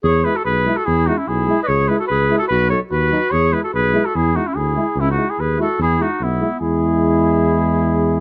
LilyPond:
<<
  \new Staff \with { instrumentName = "Flugelhorn" } { \time 2/4 \key e \major \tempo 4 = 146 cis''8 b'16 a'16 b'8. a'16 | gis'8 fis'16 e'16 gis'8.~ gis'32 dis''32 | cis''8 b'16 a'16 b'8. a'16 | b'8 cis''8 b'4 |
cis''8 b'16 a'16 b'8. a'16 | gis'8 fis'16 e'16 gis'4 | e'16 fis'8 gis'16 b'8 a'8 | gis'8 fis'8 e'4 |
gis'2~ | gis'2 | }
  \new Staff \with { instrumentName = "Clarinet" } { \time 2/4 \key e \major gis'8 gis'16 fis'16 gis'8. fis'16 | e'8 dis'16 cis'16 e'8.~ e'32 b'32 | gis'8 gis'16 fis'16 gis'8. fis'16 | fis'8 a'8 fis'4 |
gis'8 gis'16 fis'16 gis'8. fis'16 | e'8 dis'16 cis'16 e'4 | cis'16 dis'8 e'16 gis'8 fis'8 | e'8 dis'8 b4 |
e'2~ | e'2 | }
  \new Staff \with { instrumentName = "Trombone" } { \time 2/4 \key e \major r8 e'8 r8 e'8 | r8 e'8 r8 e'8 | r8 e'8 r8 e'8 | r8 dis'8 r8 dis'8 |
r8 e'8 r8 e'8 | r8 e'8 r8 e'8 | r8 e'8 r8 e'8 | r8 e'8 r8 e'8 |
e'2~ | e'2 | }
  \new Staff \with { instrumentName = "Euphonium" } { \clef bass \time 2/4 \key e \major r8 gis8 r8 gis8 | r8 gis8 r8 gis8 | r8 gis8 r8 gis8 | r8 fis8 r8 fis8 |
r8 gis8 r8 gis8 | r8 gis8 r8 gis8 | r8 gis8 r8 gis8 | r8 gis8 r8 gis8 |
gis2~ | gis2 | }
  \new Staff \with { instrumentName = "Tuba" } { \clef bass \time 2/4 \key e \major e,4 b,,4 | e,4 b,,4 | cis,4 cis,4 | b,,4 dis,4 |
e,4 b,,4 | e,4 d,4 | cis,4 dis,4 | e,4 b,,4 |
e,2~ | e,2 | }
>>